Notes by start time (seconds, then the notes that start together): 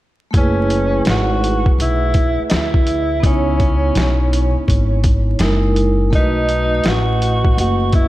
0.31 F#1 A3 E4, kick, closed hi-hat
0.35 C#4 G#4 B4
0.70 closed hi-hat
1.05 G#1, snare, closed hi-hat
1.10 F#4
1.44 closed hi-hat
1.66 muted upright bass stroke, kick
1.78 B1 E4, closed hi-hat
2.14 kick, closed hi-hat
2.39 muted upright bass stroke
2.49 D2 D#4, snare, closed hi-hat
2.54 E4
2.74 kick
2.87 closed hi-hat
3.20 C#2 B3 D#4, kick, closed hi-hat
3.25 C#4 E4 C#5
3.60 kick, closed hi-hat
3.95 B1, snare, closed hi-hat
4.33 closed hi-hat
4.55 muted upright bass stroke
4.68 G#1, kick, closed hi-hat
5.04 kick, closed hi-hat
5.39 F#1 G#3 D#4 E4 A#4, snare, closed hi-hat
5.76 closed hi-hat
6.10 B1 A3 D#5, kick, closed hi-hat
6.15 D#4 F#4 B4
6.49 closed hi-hat
6.84 A1, snare, closed hi-hat
6.88 F#4
7.22 closed hi-hat
7.45 kick
7.57 F#1 F#4, closed hi-hat
7.93 E4, kick, closed hi-hat